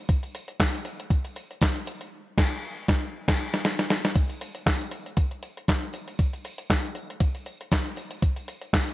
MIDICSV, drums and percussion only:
0, 0, Header, 1, 2, 480
1, 0, Start_track
1, 0, Tempo, 508475
1, 84, Time_signature, 4, 2, 24, 8
1, 8437, End_track
2, 0, Start_track
2, 0, Title_t, "Drums"
2, 82, Note_on_c, 9, 54, 49
2, 84, Note_on_c, 9, 42, 84
2, 85, Note_on_c, 9, 36, 116
2, 177, Note_off_c, 9, 54, 0
2, 178, Note_off_c, 9, 42, 0
2, 179, Note_off_c, 9, 36, 0
2, 217, Note_on_c, 9, 42, 34
2, 221, Note_on_c, 9, 54, 37
2, 311, Note_off_c, 9, 42, 0
2, 315, Note_off_c, 9, 54, 0
2, 325, Note_on_c, 9, 54, 61
2, 328, Note_on_c, 9, 42, 75
2, 420, Note_off_c, 9, 54, 0
2, 422, Note_off_c, 9, 42, 0
2, 453, Note_on_c, 9, 42, 58
2, 548, Note_off_c, 9, 42, 0
2, 564, Note_on_c, 9, 36, 117
2, 569, Note_on_c, 9, 38, 112
2, 569, Note_on_c, 9, 42, 99
2, 570, Note_on_c, 9, 54, 107
2, 576, Note_on_c, 9, 39, 95
2, 658, Note_off_c, 9, 36, 0
2, 663, Note_off_c, 9, 38, 0
2, 663, Note_off_c, 9, 42, 0
2, 664, Note_off_c, 9, 54, 0
2, 671, Note_off_c, 9, 39, 0
2, 705, Note_on_c, 9, 42, 37
2, 799, Note_off_c, 9, 42, 0
2, 802, Note_on_c, 9, 42, 80
2, 808, Note_on_c, 9, 54, 50
2, 896, Note_off_c, 9, 42, 0
2, 903, Note_off_c, 9, 54, 0
2, 941, Note_on_c, 9, 42, 54
2, 1036, Note_off_c, 9, 42, 0
2, 1037, Note_on_c, 9, 54, 47
2, 1042, Note_on_c, 9, 36, 104
2, 1043, Note_on_c, 9, 42, 86
2, 1132, Note_off_c, 9, 54, 0
2, 1137, Note_off_c, 9, 36, 0
2, 1138, Note_off_c, 9, 42, 0
2, 1173, Note_on_c, 9, 54, 34
2, 1176, Note_on_c, 9, 42, 38
2, 1268, Note_off_c, 9, 54, 0
2, 1271, Note_off_c, 9, 42, 0
2, 1280, Note_on_c, 9, 54, 52
2, 1285, Note_on_c, 9, 42, 59
2, 1375, Note_off_c, 9, 54, 0
2, 1380, Note_off_c, 9, 42, 0
2, 1423, Note_on_c, 9, 42, 45
2, 1517, Note_off_c, 9, 42, 0
2, 1520, Note_on_c, 9, 54, 95
2, 1525, Note_on_c, 9, 36, 121
2, 1526, Note_on_c, 9, 42, 93
2, 1534, Note_on_c, 9, 38, 122
2, 1541, Note_on_c, 9, 39, 89
2, 1615, Note_off_c, 9, 54, 0
2, 1619, Note_off_c, 9, 36, 0
2, 1620, Note_off_c, 9, 42, 0
2, 1628, Note_off_c, 9, 38, 0
2, 1635, Note_off_c, 9, 39, 0
2, 1660, Note_on_c, 9, 42, 36
2, 1754, Note_off_c, 9, 42, 0
2, 1755, Note_on_c, 9, 54, 47
2, 1768, Note_on_c, 9, 42, 77
2, 1850, Note_off_c, 9, 54, 0
2, 1862, Note_off_c, 9, 42, 0
2, 1896, Note_on_c, 9, 42, 54
2, 1898, Note_on_c, 9, 54, 36
2, 1990, Note_off_c, 9, 42, 0
2, 1992, Note_off_c, 9, 54, 0
2, 2243, Note_on_c, 9, 36, 110
2, 2243, Note_on_c, 9, 49, 78
2, 2248, Note_on_c, 9, 38, 96
2, 2337, Note_off_c, 9, 36, 0
2, 2338, Note_off_c, 9, 49, 0
2, 2342, Note_off_c, 9, 38, 0
2, 2723, Note_on_c, 9, 36, 114
2, 2728, Note_on_c, 9, 38, 106
2, 2817, Note_off_c, 9, 36, 0
2, 2823, Note_off_c, 9, 38, 0
2, 3096, Note_on_c, 9, 49, 82
2, 3097, Note_on_c, 9, 36, 107
2, 3101, Note_on_c, 9, 38, 112
2, 3190, Note_off_c, 9, 49, 0
2, 3191, Note_off_c, 9, 36, 0
2, 3195, Note_off_c, 9, 38, 0
2, 3339, Note_on_c, 9, 38, 82
2, 3434, Note_off_c, 9, 38, 0
2, 3445, Note_on_c, 9, 38, 100
2, 3539, Note_off_c, 9, 38, 0
2, 3579, Note_on_c, 9, 38, 83
2, 3673, Note_off_c, 9, 38, 0
2, 3685, Note_on_c, 9, 38, 101
2, 3779, Note_off_c, 9, 38, 0
2, 3821, Note_on_c, 9, 38, 93
2, 3915, Note_off_c, 9, 38, 0
2, 3922, Note_on_c, 9, 54, 53
2, 3923, Note_on_c, 9, 36, 118
2, 3923, Note_on_c, 9, 42, 81
2, 4017, Note_off_c, 9, 36, 0
2, 4017, Note_off_c, 9, 42, 0
2, 4017, Note_off_c, 9, 54, 0
2, 4054, Note_on_c, 9, 42, 34
2, 4061, Note_on_c, 9, 54, 36
2, 4148, Note_off_c, 9, 42, 0
2, 4155, Note_off_c, 9, 54, 0
2, 4165, Note_on_c, 9, 42, 74
2, 4166, Note_on_c, 9, 54, 60
2, 4259, Note_off_c, 9, 42, 0
2, 4260, Note_off_c, 9, 54, 0
2, 4292, Note_on_c, 9, 42, 64
2, 4302, Note_on_c, 9, 54, 33
2, 4386, Note_off_c, 9, 42, 0
2, 4397, Note_off_c, 9, 54, 0
2, 4402, Note_on_c, 9, 36, 116
2, 4405, Note_on_c, 9, 38, 106
2, 4405, Note_on_c, 9, 42, 98
2, 4408, Note_on_c, 9, 54, 100
2, 4413, Note_on_c, 9, 39, 93
2, 4497, Note_off_c, 9, 36, 0
2, 4500, Note_off_c, 9, 38, 0
2, 4500, Note_off_c, 9, 42, 0
2, 4502, Note_off_c, 9, 54, 0
2, 4507, Note_off_c, 9, 39, 0
2, 4541, Note_on_c, 9, 42, 38
2, 4636, Note_off_c, 9, 42, 0
2, 4639, Note_on_c, 9, 42, 79
2, 4647, Note_on_c, 9, 54, 49
2, 4733, Note_off_c, 9, 42, 0
2, 4741, Note_off_c, 9, 54, 0
2, 4778, Note_on_c, 9, 42, 52
2, 4873, Note_off_c, 9, 42, 0
2, 4878, Note_on_c, 9, 42, 90
2, 4878, Note_on_c, 9, 54, 49
2, 4881, Note_on_c, 9, 36, 109
2, 4972, Note_off_c, 9, 54, 0
2, 4973, Note_off_c, 9, 42, 0
2, 4975, Note_off_c, 9, 36, 0
2, 5014, Note_on_c, 9, 42, 37
2, 5109, Note_off_c, 9, 42, 0
2, 5122, Note_on_c, 9, 54, 44
2, 5123, Note_on_c, 9, 42, 60
2, 5217, Note_off_c, 9, 42, 0
2, 5217, Note_off_c, 9, 54, 0
2, 5260, Note_on_c, 9, 42, 46
2, 5355, Note_off_c, 9, 42, 0
2, 5363, Note_on_c, 9, 54, 95
2, 5364, Note_on_c, 9, 42, 89
2, 5365, Note_on_c, 9, 36, 115
2, 5372, Note_on_c, 9, 38, 112
2, 5379, Note_on_c, 9, 39, 95
2, 5458, Note_off_c, 9, 42, 0
2, 5458, Note_off_c, 9, 54, 0
2, 5459, Note_off_c, 9, 36, 0
2, 5466, Note_off_c, 9, 38, 0
2, 5474, Note_off_c, 9, 39, 0
2, 5497, Note_on_c, 9, 42, 34
2, 5591, Note_off_c, 9, 42, 0
2, 5596, Note_on_c, 9, 54, 52
2, 5604, Note_on_c, 9, 42, 78
2, 5691, Note_off_c, 9, 54, 0
2, 5699, Note_off_c, 9, 42, 0
2, 5736, Note_on_c, 9, 42, 51
2, 5739, Note_on_c, 9, 54, 33
2, 5831, Note_off_c, 9, 42, 0
2, 5833, Note_off_c, 9, 54, 0
2, 5841, Note_on_c, 9, 54, 51
2, 5843, Note_on_c, 9, 42, 83
2, 5844, Note_on_c, 9, 36, 110
2, 5935, Note_off_c, 9, 54, 0
2, 5937, Note_off_c, 9, 42, 0
2, 5938, Note_off_c, 9, 36, 0
2, 5978, Note_on_c, 9, 42, 35
2, 5979, Note_on_c, 9, 54, 33
2, 6073, Note_off_c, 9, 42, 0
2, 6074, Note_off_c, 9, 54, 0
2, 6084, Note_on_c, 9, 54, 61
2, 6087, Note_on_c, 9, 42, 69
2, 6178, Note_off_c, 9, 54, 0
2, 6181, Note_off_c, 9, 42, 0
2, 6213, Note_on_c, 9, 42, 59
2, 6221, Note_on_c, 9, 54, 29
2, 6308, Note_off_c, 9, 42, 0
2, 6315, Note_off_c, 9, 54, 0
2, 6324, Note_on_c, 9, 36, 118
2, 6327, Note_on_c, 9, 54, 100
2, 6328, Note_on_c, 9, 38, 120
2, 6328, Note_on_c, 9, 42, 100
2, 6336, Note_on_c, 9, 39, 87
2, 6418, Note_off_c, 9, 36, 0
2, 6422, Note_off_c, 9, 54, 0
2, 6423, Note_off_c, 9, 38, 0
2, 6423, Note_off_c, 9, 42, 0
2, 6430, Note_off_c, 9, 39, 0
2, 6465, Note_on_c, 9, 42, 35
2, 6560, Note_off_c, 9, 42, 0
2, 6561, Note_on_c, 9, 42, 79
2, 6568, Note_on_c, 9, 54, 51
2, 6655, Note_off_c, 9, 42, 0
2, 6663, Note_off_c, 9, 54, 0
2, 6703, Note_on_c, 9, 42, 58
2, 6797, Note_on_c, 9, 54, 48
2, 6798, Note_off_c, 9, 42, 0
2, 6800, Note_on_c, 9, 42, 89
2, 6802, Note_on_c, 9, 36, 102
2, 6892, Note_off_c, 9, 54, 0
2, 6894, Note_off_c, 9, 42, 0
2, 6896, Note_off_c, 9, 36, 0
2, 6934, Note_on_c, 9, 54, 34
2, 6936, Note_on_c, 9, 42, 36
2, 7029, Note_off_c, 9, 54, 0
2, 7030, Note_off_c, 9, 42, 0
2, 7041, Note_on_c, 9, 54, 47
2, 7044, Note_on_c, 9, 42, 63
2, 7135, Note_off_c, 9, 54, 0
2, 7138, Note_off_c, 9, 42, 0
2, 7181, Note_on_c, 9, 42, 48
2, 7276, Note_off_c, 9, 42, 0
2, 7282, Note_on_c, 9, 54, 91
2, 7285, Note_on_c, 9, 36, 123
2, 7285, Note_on_c, 9, 42, 91
2, 7292, Note_on_c, 9, 38, 115
2, 7300, Note_on_c, 9, 39, 91
2, 7377, Note_off_c, 9, 54, 0
2, 7379, Note_off_c, 9, 42, 0
2, 7380, Note_off_c, 9, 36, 0
2, 7387, Note_off_c, 9, 38, 0
2, 7394, Note_off_c, 9, 39, 0
2, 7416, Note_on_c, 9, 42, 35
2, 7510, Note_off_c, 9, 42, 0
2, 7518, Note_on_c, 9, 54, 48
2, 7525, Note_on_c, 9, 42, 76
2, 7612, Note_off_c, 9, 54, 0
2, 7619, Note_off_c, 9, 42, 0
2, 7653, Note_on_c, 9, 42, 53
2, 7660, Note_on_c, 9, 54, 31
2, 7747, Note_off_c, 9, 42, 0
2, 7755, Note_off_c, 9, 54, 0
2, 7762, Note_on_c, 9, 54, 49
2, 7764, Note_on_c, 9, 36, 114
2, 7764, Note_on_c, 9, 42, 83
2, 7856, Note_off_c, 9, 54, 0
2, 7858, Note_off_c, 9, 36, 0
2, 7859, Note_off_c, 9, 42, 0
2, 7895, Note_on_c, 9, 42, 35
2, 7903, Note_on_c, 9, 54, 35
2, 7989, Note_off_c, 9, 42, 0
2, 7997, Note_off_c, 9, 54, 0
2, 8005, Note_on_c, 9, 42, 76
2, 8008, Note_on_c, 9, 54, 57
2, 8100, Note_off_c, 9, 42, 0
2, 8102, Note_off_c, 9, 54, 0
2, 8132, Note_on_c, 9, 42, 64
2, 8145, Note_on_c, 9, 54, 31
2, 8227, Note_off_c, 9, 42, 0
2, 8239, Note_off_c, 9, 54, 0
2, 8243, Note_on_c, 9, 36, 122
2, 8248, Note_on_c, 9, 38, 108
2, 8248, Note_on_c, 9, 42, 97
2, 8252, Note_on_c, 9, 54, 94
2, 8255, Note_on_c, 9, 39, 86
2, 8338, Note_off_c, 9, 36, 0
2, 8342, Note_off_c, 9, 38, 0
2, 8342, Note_off_c, 9, 42, 0
2, 8346, Note_off_c, 9, 54, 0
2, 8350, Note_off_c, 9, 39, 0
2, 8383, Note_on_c, 9, 42, 33
2, 8437, Note_off_c, 9, 42, 0
2, 8437, End_track
0, 0, End_of_file